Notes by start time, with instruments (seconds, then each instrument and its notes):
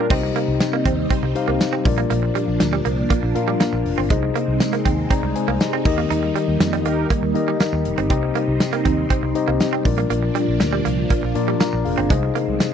Already playing: tine electric piano F4 A#4 C#5 D5 G5
0.10 fretless electric bass C2, tine electric piano C3 D#4 G4 C5 D#5, string machine G3 C4 D#4, clean electric guitar C4, kick, crash
0.23 muted clean electric guitar stroke
0.36 clean electric guitar A#3, closed hi-hat
0.48 fretless electric bass C2
0.60 muted clean electric guitar stroke, snare, closed hi-hat, tambourine
0.73 clean electric guitar A#3
0.86 fretless electric bass D#2, clean electric guitar C4, kick, closed hi-hat
1.10 clean electric guitar C4, kick, closed hi-hat
1.23 fretless electric bass C2, muted clean electric guitar stroke
1.35 tine electric piano D#4 G4 C5 F5, closed hi-hat
1.48 fretless electric bass C2, clean electric guitar A#3
1.60 snare, closed hi-hat, tambourine
1.73 clean electric guitar C4
1.85 fretless electric bass A#1, tine electric piano A#2 D4 F4 A#4 D5, string machine F3 A#3 D4, muted clean electric guitar stroke, kick, open hi-hat
1.98 clean electric guitar A#3, closed hi-hat
2.10 fretless electric bass A#1, clean electric guitar A#3, closed hi-hat
2.23 muted clean electric guitar stroke
2.35 clean electric guitar G3, closed hi-hat
2.48 fretless electric bass A#1
2.60 fretless electric bass D2, muted clean electric guitar stroke, snare, closed hi-hat, tambourine
2.73 clean electric guitar G3
2.85 fretless electric bass C2, clean electric guitar A#3, closed hi-hat
3.10 clean electric guitar A#3, kick, closed hi-hat
3.23 fretless electric bass A#1, muted clean electric guitar stroke
3.35 fretless electric bass A#2, tine electric piano D4 F4 A#4 F5, closed hi-hat
3.48 clean electric guitar G3
3.60 clean electric guitar A#3, snare, closed hi-hat, tambourine
3.73 fretless electric bass A#1, muted clean electric guitar stroke
3.85 fretless electric bass F1, open hi-hat
3.98 fretless electric bass G1, clean electric guitar C4
4.10 fretless electric bass C2, tine electric piano C3 D#4 G#4 C5 D#5, string machine G#3 C4 D#4, clean electric guitar G#3, kick, closed hi-hat
4.23 muted clean electric guitar stroke
4.36 clean electric guitar A#3, closed hi-hat
4.48 fretless electric bass C2
4.60 muted clean electric guitar stroke, snare, closed hi-hat, tambourine
4.73 clean electric guitar A#3, closed hi-hat
4.85 fretless electric bass D#2, clean electric guitar C4, kick, closed hi-hat
5.10 clean electric guitar C4, tine electric piano D5 A#5, kick, closed hi-hat
5.23 fretless electric bass C2, muted clean electric guitar stroke
5.36 tine electric piano C5 G#5, closed hi-hat
5.48 fretless electric bass C2, clean electric guitar A#3
5.60 tine electric piano G4 D#5, snare, closed hi-hat, tambourine
5.73 clean electric guitar C4
5.85 fretless electric bass D#2, tine electric piano D#3 D#4 G4 A#4 D#5, string machine G3 A#3, muted clean electric guitar stroke, kick, crash
5.98 clean electric guitar A#3
6.10 fretless electric bass D#2, clean electric guitar D#4, closed hi-hat
6.23 muted clean electric guitar stroke
6.36 clean electric guitar G3, closed hi-hat
6.48 fretless electric bass D#2
6.60 fretless electric bass F2, muted clean electric guitar stroke, snare, closed hi-hat, tambourine
6.73 clean electric guitar G3, closed hi-hat
6.85 fretless electric bass D#2, clean electric guitar A#3, analog polysynth D#4 G4 A#4, closed hi-hat
7.10 clean electric guitar A#3, kick, closed hi-hat
7.23 fretless electric bass D#2, muted clean electric guitar stroke
7.34 fretless electric bass D#3, tine electric piano D#4 G4 A#4 D#5, closed hi-hat
7.48 clean electric guitar G3
7.60 clean electric guitar A#3, snare, closed hi-hat, tambourine
7.73 fretless electric bass D#2, muted clean electric guitar stroke
7.85 fretless electric bass F1, closed hi-hat
7.98 fretless electric bass G1, clean electric guitar C4, closed hi-hat
8.10 fretless electric bass C2, tine electric piano C3 D#4 G4 C5 D#5, string machine C4 D#4, clean electric guitar C4, kick, closed hi-hat
8.23 muted clean electric guitar stroke
8.35 clean electric guitar A#3, closed hi-hat
8.48 fretless electric bass C2
8.60 muted clean electric guitar stroke, snare, closed hi-hat, tambourine
8.73 clean electric guitar A#3, closed hi-hat
8.85 fretless electric bass D#2, clean electric guitar C4, kick, closed hi-hat
9.10 clean electric guitar C4, kick, closed hi-hat
9.23 fretless electric bass C2, muted clean electric guitar stroke
9.35 tine electric piano D#4 G4 C5 D#5, closed hi-hat
9.48 fretless electric bass C2, clean electric guitar A#3
9.60 snare, closed hi-hat, tambourine
9.73 clean electric guitar C4
9.85 fretless electric bass A#1, tine electric piano A#2 D4 F4 A#4 D5, string machine F3 A#3 D4, muted clean electric guitar stroke, kick, open hi-hat
9.98 clean electric guitar A#3, closed hi-hat
10.10 fretless electric bass A#1, clean electric guitar A#3, closed hi-hat
10.23 muted clean electric guitar stroke
10.35 clean electric guitar G3, closed hi-hat
10.48 fretless electric bass A#1
10.60 fretless electric bass D2, muted clean electric guitar stroke, snare, closed hi-hat, tambourine
10.73 clean electric guitar G3
10.85 fretless electric bass C2, clean electric guitar A#3, closed hi-hat
11.10 clean electric guitar A#3, kick, closed hi-hat
11.23 fretless electric bass A#1, muted clean electric guitar stroke
11.35 fretless electric bass A#2, tine electric piano D4 F4 A#4 D5, closed hi-hat
11.48 clean electric guitar G3
11.60 clean electric guitar A#3, tine electric piano D5 A#5, snare, closed hi-hat, tambourine
11.73 fretless electric bass A#1, muted clean electric guitar stroke
11.85 fretless electric bass F1, tine electric piano G#4 F5, open hi-hat
11.98 fretless electric bass G1, clean electric guitar C4, closed hi-hat
12.10 fretless electric bass C2, tine electric piano C3 D#4 G#4 C5 D#5, string machine D#3 G#3 C4, clean electric guitar G#3, kick, closed hi-hat
12.23 muted clean electric guitar stroke
12.35 clean electric guitar A#3, closed hi-hat
12.48 fretless electric bass C2
12.60 muted clean electric guitar stroke, snare, closed hi-hat, tambourine